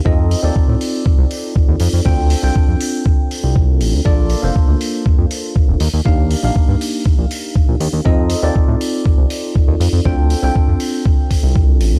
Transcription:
<<
  \new Staff \with { instrumentName = "Tine electric piano" } { \time 4/4 \key f \mixolydian \tempo 4 = 120 <c' ees' f' a' ees''>8. <c' ees' f' a' d''>2.~ <c' ees' f' a' d''>16 | <c' d' f' a' g''>8. <c' d' f' a' g''>2.~ <c' d' f' a' g''>16 | <bes d' f' a' d''>8. <bes d' f' a' c''>2~ <bes d' f' a' c''>8. r8 | <bes d' ees' g' f''>8. <bes d' ees' g' f''>2.~ <bes d' ees' g' f''>16 |
<c' ees' f' a' ees''>8. <c' ees' f' a' d''>2.~ <c' ees' f' a' d''>16 | <c' d' f' a' g''>8. <c' d' f' a' g''>2.~ <c' d' f' a' g''>16 | }
  \new Staff \with { instrumentName = "Analog synth bass" } { \clef bass \time 4/4 \key f \mixolydian f,8 r16 ees,16 r16 a,16 r8 c,16 c,16 r8. ees,16 f,16 f,16 | d,8 r16 c,16 r16 f,16 r4 r16 c,8. a,,16 d,16 | bes,,8 r16 f,,16 r16 d,16 r8 f,16 f,16 r8. f,,16 ees,16 ees,16 | ees,8 r16 bes,,16 r16 g,16 r8. bes,,16 r8. bes,,16 ees,16 ees,16 |
f,8 r16 ees,16 r16 a,16 r8 c,16 c,16 r8. ees,16 f,16 f,16 | d,8 r16 c,16 r16 f,16 r4 r16 c,8. a,,16 d,16 | }
  \new DrumStaff \with { instrumentName = "Drums" } \drummode { \time 4/4 bd8 hho8 bd8 hho8 bd8 hho8 bd8 hho8 | bd8 hho8 bd8 hho8 bd8 hho8 bd8 hho8 | bd8 hho8 bd8 hho8 bd8 hho8 bd8 hho8 | bd8 hho8 bd8 hho8 bd8 hho8 bd8 hho8 |
bd8 hho8 bd8 hho8 bd8 hho8 bd8 hho8 | bd8 hho8 bd8 hho8 bd8 <hho bd>8 bd8 hho8 | }
>>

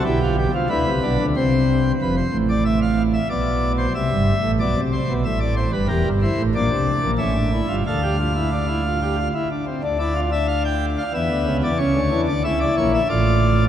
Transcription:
<<
  \new Staff \with { instrumentName = "Pipe organ" } { \time 3/4 \key g \dorian \tempo 4 = 92 << { g'4 b'4 c''4 | b'16 c''8 d''16 e''16 f''8 e''16 d''8. c''16 | e''4 d''8 c''8 e''16 d''16 c''16 b'16 | \key d \minor bes'8 c''8 d''4 e''4 |
f''2~ f''8 r8 | r16 d''8 e''16 f''16 g''8 f''16 e''8. d''16 | cis''8. d''16 e''16 d''16 cis''16 e''16 d''4 | } \\ { e'16 f'16 g'16 f'16 e'8 d'8 c'4 | r2. | r2. | g'8 e'8 d'4 cis'16 d'16 e'16 f'16 |
a'16 g'16 f'16 e'16 d'16 e'16 f'16 g'16 f'16 e'16 d'16 c'16 | d'16 e'16 f'16 d'4~ d'16 b4 | cis'8 d'8 e'4 f'4 | } >> }
  \new Staff \with { instrumentName = "Pipe organ" } { \clef bass \time 3/4 \key g \dorian <b,, b,>8. <c, c>16 <d, d>16 <c, c>16 <b,, b,>16 <d, d>16 <c, c>4 | <f,, f,>8 <a,, a,>4. <b,, b,>4 | <c, c>16 <g,, g,>8 <a,, a,>16 <b,, b,>16 <c, c>8 <b,, b,>16 <a,, a,>8. <g,, g,>16 | \key d \minor <e,, e,>16 <g,, g,>8 <a,, a,>16 <bes,, bes,>16 <c, c>8 <bes,, bes,>16 <a,, a,>8. <g,, g,>16 |
<d, d>2~ <d, d>8 r8 | <d, d>2 <e, e>16 <d, d>16 <cis, cis>16 <e, e>16 | <cis, cis>16 <d, d>16 <e, e>16 <d, d>16 <cis, cis>8 <ais,, ais,>8 <a,, a,>4 | }
>>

